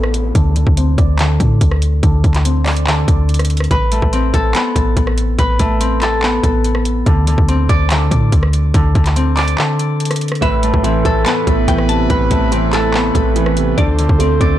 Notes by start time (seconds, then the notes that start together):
Already playing: A1 A3 B3 C4 A4 B4, downlifter
0.04 cross-stick
0.14 closed hi-hat
0.35 D2 D3, kick, closed hi-hat
0.56 D3, closed hi-hat
0.67 D2, kick
0.77 C4, closed hi-hat
0.98 D2 D5, kick, closed hi-hat
1.19 D3, clap, closed hi-hat
1.40 A2, kick, closed hi-hat
1.61 D2, kick, closed hi-hat
1.71 cross-stick
1.82 closed hi-hat
2.03 D2 D3, kick, closed hi-hat
2.24 D2 D3, kick, closed hi-hat
2.34 clap, closed hi-hat
2.44 C4, closed hi-hat
2.65 D5, clap, closed hi-hat, open hi-hat
2.76 closed hi-hat
2.87 D3, clap
3.08 D2, kick, closed hi-hat
3.29 closed hi-hat
3.34 closed hi-hat
3.39 cross-stick, closed hi-hat
3.45 closed hi-hat
3.50 closed hi-hat
3.57 cross-stick, closed hi-hat
3.64 closed hi-hat
3.71 A1 B4, kick, closed hi-hat
3.92 A3, closed hi-hat
4.02 A1, kick
4.13 C4, closed hi-hat
4.34 A1 A4, kick, closed hi-hat
4.54 B3, clap, closed hi-hat
4.76 A1, kick, closed hi-hat
4.97 A1, kick, closed hi-hat
5.07 cross-stick
5.18 closed hi-hat
5.39 A1 B4, kick, closed hi-hat
5.59 A1 A3, kick, closed hi-hat
5.81 C4, closed hi-hat
6.02 A4, clap, closed hi-hat
6.23 B3, clap
6.43 A1, kick, closed hi-hat
6.64 closed hi-hat
6.75 cross-stick
6.85 closed hi-hat
7.06 D2 D3, kick, closed hi-hat
7.27 D3, closed hi-hat
7.38 D2, kick
7.48 C4, closed hi-hat
7.69 D2 D5, kick, closed hi-hat
7.90 D3, clap, closed hi-hat
8.11 A2, kick, closed hi-hat
8.32 D2, kick, closed hi-hat
8.43 cross-stick
8.53 closed hi-hat
8.74 D2 D3, kick, closed hi-hat
8.95 D2 D3, kick, closed hi-hat
9.06 clap, closed hi-hat
9.16 C4, closed hi-hat
9.36 D5, clap, closed hi-hat, open hi-hat
9.48 closed hi-hat
9.58 D3, clap
9.79 closed hi-hat
10.00 closed hi-hat
10.05 closed hi-hat
10.11 cross-stick, closed hi-hat
10.16 closed hi-hat
10.21 closed hi-hat
10.28 cross-stick, closed hi-hat
10.35 closed hi-hat
10.41 A1 A2 C3 A3 E4 B4 E5, kick, closed hi-hat
10.63 A3, closed hi-hat
10.74 A1, kick
10.83 E3 C4, closed hi-hat
11.05 A1 A3 A4, kick, closed hi-hat
11.26 B3 A5, clap, closed hi-hat
11.47 A1 A3, kick, closed hi-hat
11.68 A1 E3 G5, kick, closed hi-hat
11.78 cross-stick
11.89 C3 A5, closed hi-hat
12.09 A1 A2 B4, kick, closed hi-hat
12.31 A1 A3, kick, closed hi-hat
12.52 E3 C4, closed hi-hat
12.73 A3 A4, clap, closed hi-hat
12.94 B3, clap
13.15 A1 A3, kick, closed hi-hat
13.36 E3, closed hi-hat
13.46 cross-stick
13.57 C3, closed hi-hat
13.78 D2 D3 F4 C5 D5, kick, closed hi-hat
13.99 D3, closed hi-hat
14.09 D2, kick
14.19 A3 C4, closed hi-hat
14.41 D2 C4 D5, kick, closed hi-hat